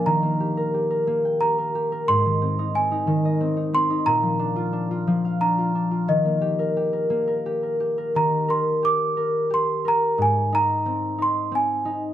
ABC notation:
X:1
M:3/4
L:1/16
Q:1/4=89
K:Eb
V:1 name="Celesta"
b8 b4 | c'4 a4 z2 c'2 | b8 b4 | e8 z4 |
b2 c'2 d'4 c'2 b2 | a2 b4 c'2 a3 z |]
V:2 name="Harp"
E, B, G B G B B, g G B G B | A,, E, C E C E E, e C E C E | B,, F, D F D F F, f D F D F | E, B, G B G B B, B G B G B |
E,2 B2 G2 B2 G2 B2 | A,,2 E2 C2 E2 C2 E2 |]